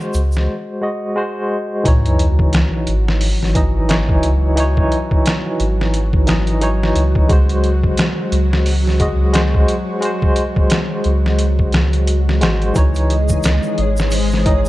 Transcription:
Already playing: G#3 F#4 C5 D#5
0.00 shaker
0.13 C#2, closed hi-hat, shaker
0.32 shaker
0.37 snare
0.81 G#3 F#4 D#5
1.16 G#3 F#4 C5
1.84 C#2 E3 F#3 D#4 F#4, kick, closed hi-hat, sub drop
1.88 C#5
2.06 closed hi-hat
2.19 closed hi-hat
2.39 kick
2.53 snare, closed hi-hat
2.87 G#1, closed hi-hat
3.08 snare
3.21 open hi-hat
3.43 snare
3.55 E3 D#4 D#5, kick, closed hi-hat
3.89 E3 D#4 C#5, snare, closed hi-hat
4.09 kick
4.23 C#2, closed hi-hat
4.56 E3 D#4, closed hi-hat
4.60 C#5
4.77 kick
4.92 closed hi-hat
5.11 kick
5.26 snare, closed hi-hat
5.60 G#1, closed hi-hat
5.81 snare
5.94 closed hi-hat
6.13 kick
6.26 E3 D#4 D#5, snare, closed hi-hat
6.47 closed hi-hat
6.61 E3 D#4 C#5, closed hi-hat
6.83 snare
6.95 C#2, closed hi-hat
7.15 kick
7.29 G#3 F#4, kick, closed hi-hat
7.33 C5
7.49 closed hi-hat
7.64 closed hi-hat
7.84 kick
7.97 snare, closed hi-hat
8.32 C#2, closed hi-hat
8.53 snare
8.66 open hi-hat
8.87 snare
9.00 G#3 F#4 D#5, kick, closed hi-hat
9.33 G#3 F#4 C5, snare, closed hi-hat
9.54 kick
9.68 closed hi-hat
10.01 G#3 F#4, closed hi-hat
10.05 C5
10.22 kick
10.36 closed hi-hat
10.56 kick
10.70 snare, closed hi-hat
11.04 C#2, closed hi-hat
11.26 snare
11.39 closed hi-hat
11.59 kick
11.72 snare, closed hi-hat
11.93 closed hi-hat
12.07 closed hi-hat
12.29 snare
12.41 G#1 G#3 F#4 C5, snare, closed hi-hat
12.62 closed hi-hat
12.74 C#2 E3 G#3 D#4 G#4, kick, closed hi-hat, shaker
12.78 C#5
12.95 closed hi-hat, shaker
13.10 D#5, closed hi-hat
13.29 kick, shaker
13.43 snare, closed hi-hat, shaker
13.63 shaker
13.78 G#1 C#5, closed hi-hat
13.97 snare, shaker
14.11 C5, open hi-hat, shaker
14.31 snare, shaker
14.45 E3 D#4 C#5 D#5, kick, closed hi-hat
14.65 shaker

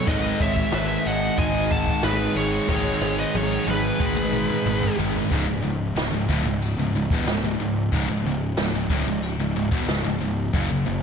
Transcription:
0.06 G#1 G#2 D#3 G#3 B4 D#5, kick, crash
0.40 G#1 C#5 E5, kick, crash
0.56 kick
0.72 G#1 B4 E5, snare, crash
1.05 G#1 D#5 F#5, crash
1.37 G#1 G#2 D#3 G#3 D#5 G#5, kick, crash
1.71 F#5 A5, kick, crash
1.87 kick
2.03 G#1 G#4 B4, snare, crash
2.35 G#1 G#2 D#3 G#3 G#4 C#5, crash
2.68 G#1 G#2 D#3 G#3, kick, snare
3.01 G#1, snare
3.18 B4 D#5
3.34 G#1 G#4 C#5, high tom
3.66 G#1 G#4 B4, high tom
3.99 G#1 G#2 D#3 G#3, kick, mid tom
4.16 mid tom
4.32 mid tom
4.49 mid tom
4.65 G#1, mid tom
4.83 floor tom
4.97 G#1 G#2 D#3 G#3, floor tom
5.16 floor tom
5.31 C#1 C#2 G#2, kick, crash
5.47 C#1 C#2 G#2
5.62 C#1 C#2 G#2
5.95 C#1 C#2 G#2, snare, crash
6.12 C#1 C#2 G#2
6.29 D1 D2 A2, kick
6.44 C#1 C#2 G#2
6.62 crash
6.77 C#1 C#2 G#2
6.92 C#1 C#2 G#2
7.10 E1 E2 B2, kick
7.25 C#1, snare, crash
7.29 C#2 G#2
7.41 C#1 C#2 G#2
7.58 C#1 C#2 G#2
7.92 C#1 C#2 G#2, kick, crash
8.08 C#1 C#2 G#2
8.25 C#1 C#2 G#2
8.56 C#1 C#2 G#2, snare, crash
8.73 C#1 C#2 G#2
8.90 D1 D2 A2, kick
9.05 C#1 C#2 G#2
9.23 crash
9.38 C#1 C#2 G#2
9.55 C#1 C#2 G#2
9.71 E1 E2 B2, kick
9.88 C#1 C#2 G#2, snare, crash
10.04 C#1 C#2 G#2
10.20 C#1 C#2 G#2
10.53 F#1 F#2 C#3, kick, crash
10.70 F#1 F#2 C#3
10.86 F#1 F#2 C#3

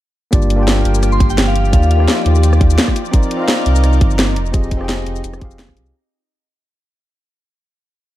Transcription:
0.31 G1 F3 A#3 D4 F4 G4 D5, kick, closed hi-hat, shaker
0.42 shaker
0.50 closed hi-hat
0.56 A#3 D4 F4
0.61 G4 G5
0.68 snare, closed hi-hat, shaker
0.85 G1, closed hi-hat
0.95 shaker
1.03 cross-stick, closed hi-hat, shaker
1.12 C6, shaker
1.20 kick, closed hi-hat
1.30 G5, shaker
1.38 G1, snare, closed hi-hat, shaker
1.47 F5
1.56 closed hi-hat
1.65 shaker
1.71 D#2 A#3 D#4 F4 G4 D5 F5, kick, closed hi-hat, shaker
1.83 shaker
1.91 F5, closed hi-hat
1.97 A#3 D#4 F4, cross-stick
2.02 G4 F5
2.08 snare, closed hi-hat, shaker
2.26 D#2, closed hi-hat
2.35 shaker
2.43 closed hi-hat, shaker
2.53 cross-stick, shaker
2.61 kick, closed hi-hat
2.70 shaker
2.78 snare, closed hi-hat, shaker
2.88 kick, cross-stick
2.96 D#4 A#4 D5, closed hi-hat, shaker
3.05 shaker
3.11 C4 D#4 F4 A#4 D5, kick, closed hi-hat, shaker
3.23 shaker
3.31 closed hi-hat
3.37 C4 D#4 F4
3.42 A#4 F5
3.48 snare, closed hi-hat, shaker
3.66 C2, closed hi-hat
3.76 shaker
3.84 cross-stick, closed hi-hat, shaker
3.93 shaker
4.01 G1, kick, closed hi-hat
4.11 shaker
4.19 snare, closed hi-hat, shaker
4.36 F1 D#4, closed hi-hat
4.46 shaker
4.52 C4 F4 G4 G#4 D#5, kick, closed hi-hat, shaker
4.63 shaker
4.71 kick, closed hi-hat
4.77 C4 F4 G4, cross-stick
4.83 G#4 G5
4.89 snare, closed hi-hat, shaker
5.06 F1, closed hi-hat
5.16 shaker
5.24 F1, closed hi-hat, shaker
5.33 cross-stick, shaker
5.38 C4 F4 G4, kick, closed hi-hat
5.43 G#4 F5
5.51 shaker
5.59 snare, closed hi-hat, shaker
5.68 kick, cross-stick
5.77 C2, closed hi-hat, shaker
5.86 shaker

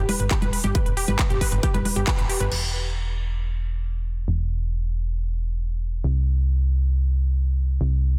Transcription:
0.09 B4, open hi-hat, high conga
0.20 G1 B4, closed hi-hat
0.31 G4, kick, clap, closed hi-hat
0.42 G1 B4, closed hi-hat, high conga
0.53 B4, open hi-hat
0.64 G1 G4, closed hi-hat, high conga
0.75 B4, kick, closed hi-hat
0.86 G1 B4, closed hi-hat
0.97 G4, open hi-hat
1.08 G1 B4, closed hi-hat, high conga
1.19 B4, kick, clap, closed hi-hat
1.30 G1 G4, closed hi-hat
1.41 B4, kick, open hi-hat
1.52 G1 B4, closed hi-hat
1.63 G4, kick, closed hi-hat
1.74 G1 B4, closed hi-hat, high conga
1.85 B4, open hi-hat, high conga
1.96 G1 G4, closed hi-hat
2.07 B4, kick, clap, closed hi-hat
2.18 G1 B4, closed hi-hat
2.29 G4, open hi-hat
2.40 G1 B4, closed hi-hat
2.52 E1, crash
4.28 E1
6.04 C2
7.81 C2

